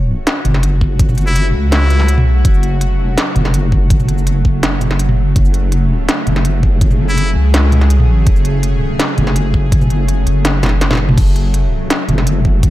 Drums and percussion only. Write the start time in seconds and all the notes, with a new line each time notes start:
0.27 snare, closed hi-hat
0.45 closed hi-hat, mid tom
0.54 snare
0.63 closed hi-hat
0.81 kick
0.99 kick, closed hi-hat
1.09 mid tom, shaker
1.15 closed hi-hat, shaker
1.21 shaker
1.27 shaker
1.36 closed hi-hat
1.72 snare, closed hi-hat
1.90 closed hi-hat, shaker
2.00 snare
2.08 closed hi-hat
2.18 mid tom
2.45 kick, closed hi-hat
2.54 shaker
2.63 closed hi-hat
2.81 closed hi-hat
3.18 snare, closed hi-hat
3.36 closed hi-hat, mid tom
3.45 snare
3.54 closed hi-hat
3.72 kick
3.90 kick, closed hi-hat
4.00 mid tom, shaker
4.09 closed hi-hat
4.18 shaker
4.27 closed hi-hat
4.45 kick
4.63 snare, closed hi-hat
4.81 closed hi-hat, mid tom, shaker
4.91 snare
4.99 closed hi-hat
5.09 mid tom
5.36 kick, closed hi-hat
5.45 shaker
5.54 closed hi-hat
5.72 closed hi-hat
6.09 snare, closed hi-hat
6.27 closed hi-hat, mid tom
6.36 snare
6.45 closed hi-hat
6.63 kick
6.81 kick, closed hi-hat
6.91 mid tom, shaker
7.09 shaker
7.18 closed hi-hat
7.54 snare, closed hi-hat
7.72 closed hi-hat, mid tom
7.81 snare
7.90 closed hi-hat
8.00 mid tom
8.27 kick, closed hi-hat
8.36 shaker
8.45 closed hi-hat
8.63 closed hi-hat
8.99 snare, closed hi-hat
9.18 closed hi-hat, mid tom
9.27 snare
9.36 closed hi-hat
9.54 kick
9.72 kick, closed hi-hat
9.82 mid tom, shaker
9.90 closed hi-hat
10.08 closed hi-hat
10.27 closed hi-hat
10.45 snare, closed hi-hat
10.63 snare, closed hi-hat, mid tom, shaker
10.66 snare
10.69 snare
10.81 snare, closed hi-hat
10.91 snare, mid tom
10.93 snare
10.95 snare
10.97 snare
11.09 mid tom
11.18 kick, closed hi-hat, crash
11.27 shaker
11.36 closed hi-hat
11.54 closed hi-hat
11.90 snare, closed hi-hat
12.09 closed hi-hat, mid tom
12.18 snare
12.27 closed hi-hat
12.45 kick
12.63 kick, closed hi-hat